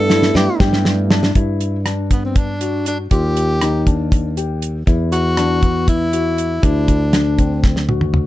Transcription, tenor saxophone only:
0.00 0.35 A4 medium
0.36 0.59 G4 medium
2.12 2.23 B3 medium
2.25 2.39 C4 medium
2.37 2.87 D4 medium
2.87 2.98 D4 medium
3.12 4.08 G4 medium
5.12 5.84 F#4 medium
5.89 6.66 E4 medium
6.64 7.64 D4 medium

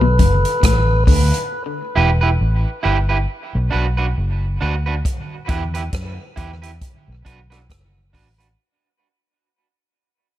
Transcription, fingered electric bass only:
0.01 0.18 B1 medium
0.20 0.43 F#1 medium
0.64 1.04 A1 medium
1.08 1.31 D2 medium
1.97 2.36 E1 loud
2.41 2.64 A1 medium
2.85 3.25 G1 medium
3.55 3.71 B1 loud
3.74 4.13 B1 medium
4.18 4.57 F#1 medium
4.62 5.01 D2 medium
5.49 5.89 E2 medium
5.94 6.17 F#2 loud
6.38 6.78 E2 medium
7.08 7.24 B1 medium
7.26 7.66 B1 medium
7.70 8.10 F#1 medium
8.15 8.54 A1 medium

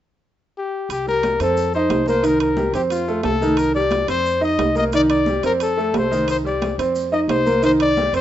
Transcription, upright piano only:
1.07 1.34 G3 medium
1.07 1.34 G4 medium
1.41 1.68 C4 medium
1.41 1.68 C5 medium
1.75 2.02 D#4 medium
1.75 2.02 D#5 medium
2.08 2.21 A#3 medium
2.08 2.21 A#4 medium
2.23 2.51 D#3 medium
2.23 2.51 D#4 medium
2.57 2.71 G3 medium
2.57 2.71 G4 medium
2.75 3.02 C4 medium
2.75 3.02 C5 medium
3.08 3.36 A3 medium
3.08 3.36 A4 medium
3.42 3.69 D#3 medium
3.42 3.69 D#4 medium
3.76 4.03 G3 medium
3.76 4.03 G4 medium
4.08 4.36 C4 medium
4.08 4.37 C5 medium
4.41 4.69 D#4 medium
4.41 4.69 D#5 medium
4.75 4.90 A#3 medium
4.75 4.90 A#4 medium
4.93 5.21 D#3 medium
4.93 5.21 D#4 medium
5.27 5.41 G3 medium
5.27 5.42 G4 medium
5.43 5.71 C4 medium
5.43 5.72 C5 medium
5.77 6.05 A3 medium
5.77 6.05 A4 medium
6.11 6.39 D#3 medium
6.11 6.39 D#4 medium
6.44 6.72 G3 medium
6.44 6.73 G4 medium
6.79 7.07 C4 medium
6.79 7.06 C5 medium
7.12 7.40 D#4 medium
7.12 7.40 D#5 medium
7.46 7.60 A#3 medium
7.46 7.60 A#4 medium
7.62 7.90 D#3 medium
7.62 7.90 D#4 medium
7.97 8.10 G3 medium
7.97 8.10 G4 medium
8.13 8.21 C4 medium
8.13 8.21 C5 medium

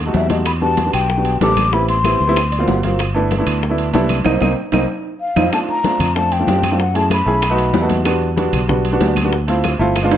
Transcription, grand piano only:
0.05 0.22 G3 medium
0.05 0.23 A3 medium
0.05 0.23 D#4 medium
0.05 0.24 F#4 medium
0.29 0.45 G3 medium
0.29 0.46 A3 medium
0.29 0.46 D#4 medium
0.29 0.46 F#4 medium
0.61 0.78 G3 medium
0.61 0.78 B3 medium
0.61 0.79 D4 medium
0.61 0.79 F#4 medium
0.85 1.07 G3 medium
0.85 1.08 B3 medium
0.85 1.08 D4 medium
0.85 1.08 F#4 medium
1.17 1.34 G3 medium
1.17 1.34 B3 medium
1.17 1.34 D4 medium
1.17 1.35 F#4 medium
1.41 1.63 G3 medium
1.41 1.63 B3 medium
1.41 1.64 D4 medium
1.41 1.64 A4 medium
1.72 1.94 G3 medium
1.72 1.95 B3 medium
1.72 1.95 C4 medium
1.72 1.95 E4 medium
2.04 2.21 G3 medium
2.04 2.21 B3 medium
2.04 2.21 C4 medium
2.04 2.22 E4 medium
2.27 2.36 G3 medium
2.27 2.36 B3 medium
2.27 2.36 C4 medium
2.27 2.36 E4 loud
2.52 2.67 D5 medium
2.58 2.76 F#3 medium
2.58 2.76 A#3 medium
2.58 2.76 C4 medium
2.58 2.77 F4 medium
2.68 2.97 F#5 medium
2.83 2.99 F#3 medium
2.83 2.99 A#3 medium
2.83 3.00 C4 medium
2.83 3.00 F4 medium
3.14 3.31 A3 medium
3.14 3.32 B3 medium
3.14 3.32 D4 medium
3.14 3.32 E4 medium
3.38 3.61 A3 medium
3.38 3.61 B3 medium
3.38 3.61 D4 medium
3.38 3.62 E4 medium
3.69 3.87 A3 medium
3.69 3.87 B3 medium
3.69 3.87 D4 medium
3.69 3.88 E4 medium
3.93 4.16 A3 medium
3.93 4.16 B3 medium
3.93 4.17 D4 medium
3.93 4.17 E4 loud
4.25 4.36 A#3 medium
4.25 4.36 C4 medium
4.25 4.36 D#4 medium
4.42 4.52 A#3 medium
4.42 4.52 C4 medium
4.42 4.52 D#4 medium
4.73 4.83 A#3 medium
4.73 4.83 C4 medium
4.73 4.83 D#4 medium
5.37 5.47 C4 medium
5.37 5.47 D#4 medium
5.37 5.47 F4 medium
5.52 5.74 A3 medium
5.52 5.75 C4 medium
5.52 5.75 D4 medium
5.52 5.75 F4 medium
5.83 6.06 A3 medium
5.83 6.06 C4 medium
5.83 6.07 D4 medium
5.83 6.07 F4 medium
6.15 6.32 A3 medium
6.15 6.33 C4 medium
6.15 6.33 D4 medium
6.15 6.33 F4 medium
6.39 6.61 A3 medium
6.39 6.62 C4 medium
6.39 6.62 D4 medium
6.39 6.62 F4 medium
6.71 6.79 A3 medium
6.71 6.79 C4 medium
6.71 6.80 D4 medium
6.71 6.80 F4 medium
6.94 7.17 A3 medium
6.94 7.17 C#4 medium
6.94 7.17 E4 medium
6.94 7.18 G#4 medium
7.26 7.42 A3 medium
7.26 7.42 C#4 medium
7.26 7.43 E4 medium
7.26 7.43 G#4 medium
7.50 7.72 A3 medium
7.50 7.72 B3 medium
7.50 7.73 D#4 medium
7.50 7.73 F#4 loud
7.81 7.98 A3 medium
7.81 7.99 B3 medium
7.81 7.99 D#4 medium
7.81 7.99 F#4 medium
8.05 8.27 G3 medium
8.05 8.28 B3 medium
8.05 8.28 D4 medium
8.05 8.28 F#4 medium
8.36 8.59 G3 medium
8.36 8.59 B3 medium
8.36 8.60 D4 medium
8.36 8.60 F#4 loud
8.68 8.85 G3 medium
8.68 8.86 B3 medium
8.68 8.86 D4 medium
8.68 8.86 F#4 medium
8.92 9.14 G3 medium
8.92 9.15 B3 medium
8.92 9.15 D4 medium
8.92 9.15 F#4 loud
9.24 9.32 G3 medium
9.24 9.32 B3 medium
9.24 9.32 D4 medium
9.24 9.33 F#4 medium
9.47 9.70 A3 medium
9.47 9.70 C4 medium
9.47 9.71 E4 medium
9.47 9.71 F4 medium
9.79 9.95 A3 medium
9.79 9.96 C4 medium
9.79 9.96 E4 medium
9.79 9.96 F4 loud
10.03 10.17 G#3 medium
10.03 10.17 B3 medium
10.03 10.17 D4 medium
10.03 10.17 F4 loud

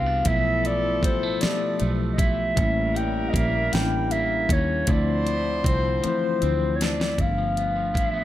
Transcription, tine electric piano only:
0.00 0.28 G3 medium
0.00 0.28 B3 medium
0.00 0.27 D4 medium
0.00 0.28 F#4 medium
0.00 0.28 G4 medium
0.25 1.09 F3 medium
0.25 1.09 A3 medium
0.25 1.10 B3 medium
0.29 1.11 E4 medium
1.40 2.24 F3 medium
1.40 2.25 A3 medium
1.40 2.26 B3 medium
1.45 2.27 G4 medium
2.56 3.39 G3 medium
2.56 3.40 A#3 medium
2.56 3.41 C#4 medium
2.61 3.42 E4 medium
3.71 4.55 G3 medium
3.71 4.56 A#3 medium
3.71 4.57 C#4 medium
3.77 3.81 D4 medium
3.83 4.61 E4 medium
4.86 5.70 F3 medium
4.86 5.71 A3 medium
4.86 5.72 C4 medium
4.92 5.73 E4 medium
6.02 6.09 E3 medium
6.02 6.86 A3 medium
6.02 6.87 C4 medium
6.07 6.89 F3 medium
6.07 6.88 E4 medium
7.17 8.01 F3 medium
7.17 8.02 A3 medium
7.17 8.03 B3 medium
7.23 7.27 D#4 medium
7.29 8.07 D4 medium

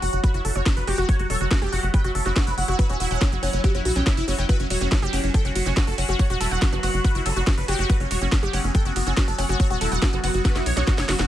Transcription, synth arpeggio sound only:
0.02 0.05 F#5 medium
0.24 0.31 F#4 medium
0.34 0.39 E4 medium
0.56 0.59 C#5 medium
0.87 0.93 G4 loud
0.98 1.03 F#4 loud
1.09 1.16 F#4 medium
1.30 1.35 C#5 medium
1.41 1.44 F#4 medium
1.62 1.67 G4 loud
1.73 1.76 F#5 medium
1.94 1.97 G5 medium
2.04 2.08 F#4 medium
2.26 2.29 F#4 medium
2.36 2.42 F#4 medium
2.58 2.61 F#5 medium
2.68 2.73 F#4 loud
2.79 2.87 F#4 medium
2.90 2.95 F#4 loud
3.00 3.08 E4 medium
3.11 3.16 F#5 loud
3.32 3.35 F#4 medium
3.43 3.46 F#5 medium
3.64 3.72 F#4 medium
3.75 3.80 E4 medium
3.96 4.01 G5 medium
4.07 4.12 E4 medium
4.28 4.31 F#4 medium
4.38 4.44 G5 medium
4.49 4.57 F#4 medium
4.70 4.76 C#5 medium
4.81 4.84 F#4 medium
5.02 5.08 G4 loud
5.13 5.16 F#5 medium
5.34 5.37 G5 medium
5.45 5.48 F#4 medium
5.66 5.69 F#4 medium
5.77 5.82 F#4 medium
5.98 6.01 F#5 medium
6.09 6.14 F#4 loud
6.19 6.27 F#4 medium
6.30 6.35 F#4 loud
6.41 6.48 E4 medium
6.51 6.56 F#5 loud
6.73 6.76 F#4 medium
6.83 6.86 F#5 medium
7.04 7.12 F#4 medium
7.15 7.20 E4 medium
7.36 7.42 F#4 medium
7.68 7.73 G4 loud
7.79 7.84 F#4 loud
7.90 7.97 F#4 medium
8.11 8.16 C#5 medium
8.21 8.25 F#4 medium
8.43 8.48 G4 loud
8.53 8.56 F#5 medium
8.75 8.78 G5 medium
8.85 8.88 F#4 medium
9.07 9.10 F#4 medium
9.17 9.22 F#4 medium
9.38 9.42 F#5 medium
9.49 9.54 F#4 loud
9.70 9.76 F#4 loud
9.81 9.89 E4 medium
9.92 9.97 F#5 loud
10.13 10.16 F#4 medium
10.24 10.27 F#5 medium
10.45 10.53 F#4 medium
10.56 10.61 E4 medium
10.77 10.82 C#5 loud
10.87 10.93 F#4 medium
11.09 11.14 F#4 medium
11.19 11.22 F#5 medium

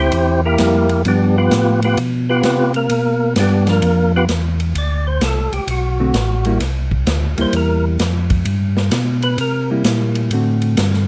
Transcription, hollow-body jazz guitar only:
0.60 0.87 G3 medium
0.60 0.88 A#3 medium
0.60 0.88 E4 medium
1.05 2.35 F3 medium
1.05 2.35 B3 medium
1.05 2.36 D4 medium
3.68 4.26 F3 medium
3.68 4.27 D4 medium
6.00 6.13 D3 medium
6.00 6.14 A3 medium
6.00 6.13 C4 medium
6.00 6.14 F#4 medium
6.46 6.59 G3 medium
6.46 6.60 A#3 medium
6.46 6.60 E4 medium
7.38 7.97 G3 medium
7.38 7.97 A#3 medium
7.38 7.97 E4 medium
9.71 10.29 G3 medium
9.71 10.29 A#3 medium
9.71 10.30 E4 medium
10.33 11.08 D3 medium
10.33 11.08 A3 medium
10.33 11.08 C4 medium
10.33 11.08 F#4 medium

